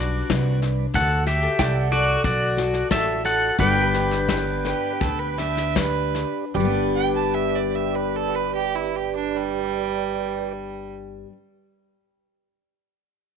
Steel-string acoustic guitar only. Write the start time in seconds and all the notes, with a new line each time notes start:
Already playing: D3 B4
0.00 D4
0.30 G3
0.95 D3 F#4
1.27 G4
1.43 A4
1.93 A4
2.24 A2
2.58 F#4
2.91 F#3
3.59 G2 G3 B3 D4 B4
3.94 B4
4.29 G3 D4
4.66 B4
5.01 D3
5.40 D4
5.76 G3
6.55 G2
6.60 G3
6.65 B3
6.70 D4
6.75 B4